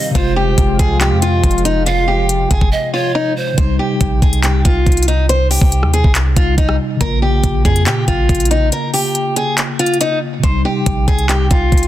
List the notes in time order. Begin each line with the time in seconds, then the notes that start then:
Already playing: C3 D#3 G3 D#4 D#5
0.10 C3
0.15 F1 F3 G#3 F4 C5, kick, closed hi-hat
0.19 F4
0.36 G4
0.58 F1, kick, closed hi-hat
0.79 C2 G#4, kick, closed hi-hat
1.01 G4, clap, closed hi-hat
1.11 F2
1.22 F4, closed hi-hat
1.44 F1, kick, closed hi-hat
1.51 closed hi-hat
1.58 closed hi-hat
1.65 D#4, closed hi-hat
1.86 F4 F5, closed hi-hat
2.08 G4
2.29 closed hi-hat
2.51 F1 G#4, kick, closed hi-hat
2.61 F1, kick
2.72 D#5
2.93 F4 C#5
3.15 D#4
3.37 C5
3.53 C3
3.58 C2 G3 C5, kick, closed hi-hat
3.62 D#4
3.79 G4
4.01 A#1, kick, closed hi-hat
4.22 C2 G#4, kick, closed hi-hat
4.33 closed hi-hat
4.44 G4, clap, closed hi-hat
4.65 C2 F4, kick, closed hi-hat
4.86 C2, kick, closed hi-hat
4.92 closed hi-hat
4.97 closed hi-hat
5.03 closed hi-hat
5.08 D#4, closed hi-hat
5.29 C5, closed hi-hat
5.51 G4, open hi-hat
5.61 C2, kick
5.72 closed hi-hat
5.83 D#2, cross-stick
5.94 G#4, closed hi-hat
6.04 C2, kick
6.15 clap, closed hi-hat
6.34 C2 C3 G3 F4, kick, closed hi-hat
6.39 D#4
6.58 C2 D#4, kick, closed hi-hat
6.69 cross-stick
6.96 C#3
7.01 A#1 A#3 A#4, kick, closed hi-hat
7.05 F4
7.22 G4
7.44 A#1, kick, closed hi-hat
7.65 F2 G#4, kick, closed hi-hat
7.76 closed hi-hat
7.86 A#2 G4, clap, closed hi-hat
8.08 A#1 F4, kick, closed hi-hat
8.29 A#1, kick, closed hi-hat
8.35 closed hi-hat
8.40 closed hi-hat
8.45 closed hi-hat
8.51 D#4, closed hi-hat
8.72 A#4, closed hi-hat
8.94 G4, open hi-hat
9.15 closed hi-hat
9.36 G#4, closed hi-hat
9.58 clap, closed hi-hat
9.79 F4, closed hi-hat
9.86 closed hi-hat
9.94 closed hi-hat
10.01 D#4, closed hi-hat
10.39 C3
10.44 C2 G3 C5, kick, closed hi-hat
10.48 D#4
10.65 G4
10.86 A#1, kick, closed hi-hat
11.08 C2 G#4, kick, closed hi-hat
11.19 closed hi-hat
11.29 G4, clap, closed hi-hat
11.51 C2 F4, kick, closed hi-hat
11.72 C2, kick, closed hi-hat
11.78 closed hi-hat
11.83 closed hi-hat